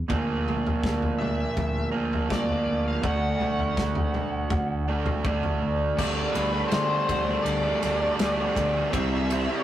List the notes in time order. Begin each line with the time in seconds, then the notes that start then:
0.08 D2 A#2 F3 A#3, kick, floor tom
0.48 mid tom
0.67 floor tom
0.83 D2, kick, snare
1.02 floor tom
1.18 E5, mid tom
1.57 D2, kick, floor tom
1.91 A#2 F3 A#3
2.13 floor tom
2.29 D2 A#2 F3 A#3 D5, kick, snare, mid tom
2.49 floor tom
2.67 D2
2.88 F5
3.02 D2 D3 A3 D4 F#5, kick, floor tom
3.40 D2, mid tom
3.59 floor tom
3.77 D2, kick, snare
3.95 floor tom
4.14 D2, mid tom
4.50 D2, kick, floor tom
4.88 D3 A3 D4
5.06 floor tom, mid tom
5.24 D2 D3 A3 D4, kick, mid tom
5.43 floor tom
5.62 D2
5.98 D2 D3 G3 A3 D4 D5, kick, crash
6.32 D2 D3 G3 B4, ride
6.37 A3 D4
6.53 G3 A3 D4
6.68 C5, ride
6.72 D3 G3 A3 D4, snare
6.89 G3 A3 D4
7.08 D2 D3 G3 A3 D4, muted distorted electric guitar stroke, kick, ride
7.27 G3 A3 D4
7.42 D2 D5, ride
7.64 G3 A3 D4
7.83 D2 D3 G3 A3 D4, snare, ride
8.02 G3 A3 D4
8.19 D2 D3 G3 A3 D4, snare, ride
8.38 G3 A3 D4
8.56 D2 D3 G3 A3 D4, kick, ride
8.91 C2 C3 G3 C4 E4 E5, kick, ride
9.29 C3 G3 C4, ride
9.34 C4 E4
9.49 G3 C4 E4